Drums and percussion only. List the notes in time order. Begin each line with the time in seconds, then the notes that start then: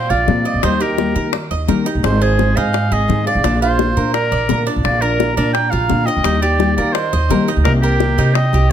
0.11 high bongo
0.28 high bongo, low bongo
0.45 high bongo
0.63 high bongo
0.98 high bongo
1.16 high bongo
1.33 high bongo
1.51 high bongo
1.68 high bongo, low bongo
1.87 high bongo
2.04 high bongo
2.39 high bongo
2.57 high bongo
2.74 high bongo
2.91 high bongo
3.10 high bongo, low bongo
3.27 high bongo
3.44 high bongo
3.79 high bongo
3.97 high bongo
4.14 high bongo
4.31 high bongo
4.49 high bongo, low bongo
4.67 high bongo
4.85 high bongo
5.20 high bongo
5.37 high bongo
5.55 high bongo
5.72 high bongo
5.90 high bongo, low bongo
6.07 high bongo
6.24 high bongo
6.60 high bongo
6.78 high bongo
6.95 high bongo
7.13 high bongo
7.31 high bongo, low bongo
7.48 high bongo
7.65 high bongo
8.00 high bongo
8.18 high bongo
8.35 high bongo
8.53 high bongo